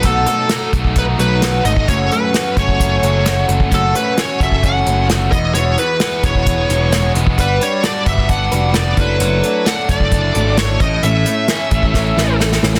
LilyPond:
<<
  \new Staff \with { instrumentName = "Lead electric guitar" } { \time 4/4 \key fis \dorian \tempo 4 = 131 a'8 a'4 r8 b'8 b'4 dis''8 | cis''8 b'4 cis''2 r8 | a'8 b'8 cis''8 e''8 fis''4 r8 dis''8 | cis''8 b'4 cis''2 r8 |
b'8 cis''8 d''8 e''8 fis''4 d''8 b'8~ | b'4 fis''8 d''4. cis''8 dis''8 | e''2. r4 | }
  \new Staff \with { instrumentName = "Twelve-string acoustic guitar" } { \time 4/4 \key fis \dorian <b, fis a dis' fis'>8 <a dis' fis'>8 <fis a dis' fis'>4. <a dis' fis'>8 <fis a dis' fis'>8 <a dis' fis'>8 | <fis, cis fis a cis' fis'>8 <fis a cis' fis'>8 <fis a cis' fis'>4. <fis a cis' fis'>8 <fis a cis' fis'>8 <fis a cis' fis'>8 | <fis, cis fis a cis' fis'>8 <fis a cis' fis'>8 <fis a cis' fis'>4. <fis a cis' fis'>8 <fis a cis' fis'>8 <b e' fis'>8 | <e gis b e' fis'>8 <b e' fis'>8 <gis b e' fis'>4. <b e' fis'>8 <gis b e' fis'>8 <b e' fis'>8 |
<g d' fis' b'>8 <d' fis' b'>8 <g d' fis' b'>4. <d' fis' b'>8 <g d' fis' b'>8 <a d' e' a'>8 | <fis, e a d' e' a'>8 <a d' e' a'>8 <a d' e' a'>4. <a d' e' a'>8 <a d' e' a'>8 <a cis' e' a'>8 | <a, e a cis' e' a'>8 <a cis' e' a'>8 <a cis' e' a'>4. <a cis' e' a'>8 <a cis' e' a'>8 <a cis' e' a'>8 | }
  \new Staff \with { instrumentName = "Overdriven electric guitar" } { \time 4/4 \key fis \dorian <b, fis a dis'>4 dis'8 a8 dis'8 fis8 a8 dis'8 | fis,4 cis'8 a8 cis'8 fis8 a8 cis'8 | fis,4 cis'8 a8 cis'8 fis8 a8 e,8 | e,4 b8 gis8 b8 fis8 gis8 b8 |
g4 d'8 b8 d'8 g8 b8 fis8 | fis4 d'8 a8 d'8 fis8 a8 a,8 | a,4 cis'8 a8 cis'8 e8 a8 cis'8 | }
  \new Staff \with { instrumentName = "Picked electric bass" } { \clef bass \time 4/4 \key fis \dorian b,,8 r4 b,,4 b,,4 gis,,8 | fis,,8 r4 fis,,4 fis,,4 fis,,8 | fis,,8 r4 fis,,4 fis,,4 e,,8 | e,,8 r4 e,,4 e,,4 e,,8 |
g,,8 r4 g,,4 f,,4 fis,,8 | fis,,8 r4 fis,,4 gis,,4 a,,8 | a,,8 r4 a,,4 a,,4 a,,8 | }
  \new DrumStaff \with { instrumentName = "Drums" } \drummode { \time 4/4 <hh bd>8 hh8 <hh sn>8 <hh bd>16 bd16 <hh bd>8 hh8 <hh sn>8 hh16 bd16 | <hh bd>8 hh8 <hh sn>8 <hh bd>16 bd16 <hh bd>8 hh8 <hh sn>8 hh16 bd16 | <hh bd>8 hh8 <hh sn>8 <hh bd>16 bd16 <hh bd>8 hh8 <hh sn>8 <hh bd>8 | hh8 hh8 <hh sn>8 <hh bd>16 bd16 <hh bd>8 hh8 <hh sn>8 hh16 bd16 |
<hh bd>8 hh8 <hh sn>8 <hh bd>16 bd16 <hh bd>8 hh8 <hh sn>8 <hh bd>8 | hh8 hh8 <hh sn>8 <hh bd>16 bd16 <hh bd>8 hh8 <hh sn>8 <hh bd>8 | hh8 hh8 <hh sn>8 <hh bd>16 bd16 <bd sn>8 sn8 sn16 sn16 sn16 sn16 | }
>>